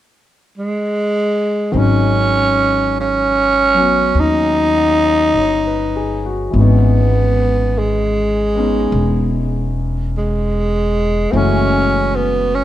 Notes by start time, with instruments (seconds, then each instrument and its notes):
0.58 tenor saxophone G#3
1.72 upright bass G#1, grand piano D#3 F#3 G#3, tenor saxophone C4
1.76 grand piano C#4 D#4, tenor saxophone C#4
3.00 tenor saxophone C#4
3.74 grand piano F#3 B3 C#4
4.15 upright bass D#2
4.20 tenor saxophone D#4
4.77 grand piano F#5
5.06 grand piano D#5
5.34 upright bass G1, grand piano C#5
5.67 grand piano B4
5.96 grand piano G#4
6.26 grand piano F#4
6.50 upright bass G#1, grand piano E3 G#3
6.56 grand piano B3 C#4, tenor saxophone B3
6.61 grand piano D#4
7.78 tenor saxophone G#3
8.55 grand piano B3 C#4 D#4
8.92 upright bass E1
10.17 tenor saxophone G#3
11.32 upright bass F#1, grand piano E3 G#3 A3 C#4, tenor saxophone C4
11.37 tenor saxophone C#4, grand piano F#4
12.15 tenor saxophone B3
12.55 tenor saxophone C#4